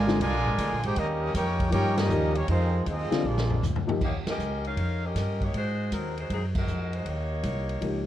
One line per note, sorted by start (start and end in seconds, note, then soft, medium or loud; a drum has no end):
0.00 0.19 G#1 loud
0.00 0.18 D3 medium
0.00 0.18 F3 medium
0.00 0.18 G#3 loud
0.00 0.19 F4 medium
0.00 0.19 A#4 medium
0.00 0.19 D5 medium
0.00 0.20 G#5 loud
0.07 0.18 D3 medium
0.07 0.19 G3 medium
0.07 0.19 C4 medium
0.07 0.19 F4 medium
0.07 snare medium
0.20 0.32 C2 medium
0.20 0.80 D3 loud
0.20 0.80 F3 medium
0.20 0.80 G#3 loud
0.20 0.80 F4 loud
0.20 0.80 A#4 loud
0.20 0.80 D5 loud
0.20 0.80 G#5 loud
0.20 kick soft
0.20 ride medium
0.32 0.44 A#1 medium
0.44 0.57 G#1 medium
0.58 0.72 D2 loud
0.58 kick soft
0.58 hi-hat pedal medium
0.58 ride medium
0.71 0.83 A#1 medium
0.84 0.95 G#1 medium
0.84 0.97 D#4 medium
0.84 0.96 G4 medium
0.84 0.96 G#4 medium
0.84 0.97 C5 medium
0.84 0.97 G5 loud
0.84 ride medium
0.96 1.33 D#2 medium
0.96 1.34 G3 medium
0.96 1.33 A#3 medium
0.96 1.36 C#4 loud
0.96 1.34 D#4 medium
0.96 1.35 G4 medium
0.96 1.35 A#4 medium
0.96 1.35 D#5 loud
0.96 kick soft
0.96 ride medium
1.34 1.71 F2 loud
1.34 1.69 A#3 medium
1.34 1.69 C#4 medium
1.34 1.70 D#4 medium
1.34 1.69 G4 medium
1.34 1.71 A#4 medium
1.34 1.71 C#5 medium
1.34 1.70 G5 loud
1.34 kick soft
1.34 hi-hat pedal medium
1.34 ride medium
1.60 kick medium
1.60 ride medium
1.71 2.09 G2 medium
1.71 2.07 F3 medium
1.71 2.08 A#3 medium
1.71 1.95 A#3 loud
1.71 1.96 C#4 medium
1.71 2.08 D#4 medium
1.71 1.96 D#4 medium
1.71 1.95 G4 medium
1.71 2.09 G4 medium
1.71 1.96 A#4 loud
1.71 1.96 C#5 loud
1.71 1.96 G5 loud
1.71 kick soft
1.71 ride medium
1.98 2.36 G3 medium
1.98 2.36 A#3 medium
1.98 2.36 C#4 medium
1.98 2.36 D#4 medium
1.98 2.36 G4 medium
1.98 2.36 A#4 medium
1.98 2.36 D#5 loud
1.98 snare loud
1.98 ride medium
2.09 2.47 D#2 loud
2.09 2.32 F3 medium
2.09 2.33 A#3 medium
2.09 2.33 D#4 medium
2.09 2.33 G4 medium
2.09 hi-hat pedal medium
2.36 2.49 G3 medium
2.36 2.49 A#3 medium
2.36 2.49 C#4 medium
2.36 2.48 D#4 medium
2.36 2.49 G4 medium
2.36 2.49 C#5 medium
2.36 ride medium
2.48 2.85 F2 medium
2.48 2.84 D#3 medium
2.48 2.83 G#3 medium
2.48 2.84 G#3 medium
2.48 2.84 C4 medium
2.48 2.84 D#4 medium
2.48 2.85 F4 medium
2.48 2.84 C5 medium
2.48 kick soft
2.48 ride medium
2.86 3.10 D#2 loud
2.86 3.23 G#3 medium
2.86 3.25 C4 medium
2.86 3.25 D#4 medium
2.86 3.25 F4 medium
2.86 3.25 G#4 medium
2.86 3.26 D#5 medium
2.86 kick soft
2.86 hi-hat pedal medium
2.86 ride medium
3.11 3.23 D3 medium
3.11 3.23 G3 medium
3.11 3.23 C4 medium
3.11 3.23 F4 medium
3.11 muted upright bass stroke soft
3.11 snare medium
3.11 ride medium
3.24 3.61 A#1 medium
3.24 3.62 F3 medium
3.24 3.62 G#3 medium
3.24 3.63 A#3 medium
3.24 3.62 D4 medium
3.24 3.63 F4 medium
3.24 3.63 G#4 medium
3.24 3.63 D5 medium
3.37 snare medium
3.50 floor tom medium
3.62 3.99 D2 medium
3.62 floor tom medium
3.62 hi-hat pedal medium
3.75 floor tom medium
3.86 3.99 F3 medium
3.86 3.99 A#3 medium
3.86 3.99 D#4 medium
3.86 3.99 G4 medium
3.86 floor tom loud
4.01 4.24 D#2 medium
4.01 4.14 A#3 medium
4.01 4.14 D#4 medium
4.01 4.14 G4 medium
4.01 4.14 C#5 medium
4.01 kick medium
4.01 crash medium
4.26 4.63 C#4 medium
4.26 4.63 G4 medium
4.26 4.62 A#4 medium
4.26 4.63 D#5 medium
4.26 muted upright bass stroke soft
4.26 snare medium
4.26 ride medium
4.38 4.75 C#2 medium
4.38 hi-hat pedal medium
4.65 5.03 D#4 medium
4.65 5.03 A#4 medium
4.65 5.03 C#5 medium
4.65 5.03 F5 loud
4.65 ride soft
4.76 5.13 F2 medium
4.76 kick soft
4.76 ride medium
5.04 5.41 C#4 medium
5.04 5.41 G4 medium
5.04 5.41 A#4 medium
5.04 5.41 D#5 medium
5.15 5.52 G2 medium
5.15 kick soft
5.15 snare soft
5.15 hi-hat pedal medium
5.15 ride medium
5.41 5.54 A#3 medium
5.41 5.54 D#4 medium
5.41 5.54 G4 medium
5.41 5.54 C#5 medium
5.41 kick medium
5.41 ride soft
5.53 5.90 G#2 medium
5.53 5.90 G#3 medium
5.53 5.90 D#4 medium
5.53 5.90 F#4 medium
5.53 5.90 C5 medium
5.53 kick soft
5.53 ride medium
5.91 6.28 D#2 medium
5.91 6.15 F#3 medium
5.91 6.15 C4 medium
5.91 6.15 D#4 medium
5.91 6.15 A#4 medium
5.91 kick soft
5.91 hi-hat pedal soft
5.91 ride medium
6.17 6.31 G#3 medium
6.17 6.30 D#4 medium
6.17 6.31 F#4 medium
6.17 6.31 C5 medium
6.17 ride soft
6.30 6.66 F#2 medium
6.30 6.42 F#3 medium
6.30 6.42 C4 medium
6.30 6.43 D#4 medium
6.30 6.42 G#4 medium
6.30 kick soft
6.30 ride medium
6.55 6.91 G#3 medium
6.55 6.91 D#4 medium
6.55 6.91 F#4 medium
6.55 6.91 A#4 medium
6.55 kick medium
6.55 crash medium
6.67 7.04 F2 medium
6.67 hi-hat pedal medium
6.93 7.06 G#3 medium
6.93 7.06 D#4 medium
6.93 7.06 F#4 medium
6.93 7.06 C5 medium
6.93 ride soft
7.05 7.42 D#2 medium
7.05 8.06 A#3 medium
7.05 8.06 D#4 medium
7.05 8.06 G4 medium
7.05 8.06 C#5 medium
7.05 kick soft
7.05 ride medium
7.43 7.80 C2 medium
7.43 kick soft
7.43 hi-hat pedal soft
7.43 ride medium
7.69 ride soft
7.81 8.06 C#2 medium
7.81 8.04 F3 medium
7.81 8.04 A#3 soft
7.81 8.05 D#4 soft
7.81 8.05 G4 medium
7.81 kick soft
7.81 ride medium